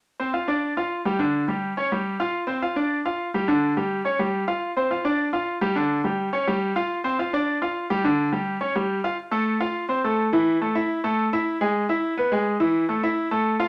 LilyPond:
\new Staff \with { instrumentName = "Grand piano" } { \time 4/4 \key d \minor \tempo 4 = 210 r8 <c' c''>8 <f' f''>8 <d' d''>4 <f' f''>4 <g g'>8 | <d d'>4 <g g'>4 <cis' cis''>8 <g g'>4 <f' f''>8~ | <f' f''>8 <c' c''>8 <f' f''>8 <d' d''>4 <f' f''>4 <g g'>8 | <d d'>4 <g g'>4 <cis' cis''>8 <g g'>4 <f' f''>8~ |
<f' f''>8 <c' c''>8 <f' f''>8 <d' d''>4 <f' f''>4 <g g'>8 | <d d'>4 <g g'>4 <cis' cis''>8 <g g'>4 <f' f''>8~ | <f' f''>8 <c' c''>8 <f' f''>8 <d' d''>4 <f' f''>4 <g g'>8 | <d d'>4 <g g'>4 <cis' cis''>8 <g g'>4 <f' f''>8 |
r8 <a a'>4 <f' f''>4 <c' c''>8 <a a'>4 | <e e'>4 <a a'>8 <e' e''>4 <a a'>4 <e' e''>8~ | <e' e''>8 <gis gis'>4 <e' e''>4 <b b'>8 <gis gis'>4 | <e e'>4 <a a'>8 <e' e''>4 <a a'>4 <f' f''>8 | }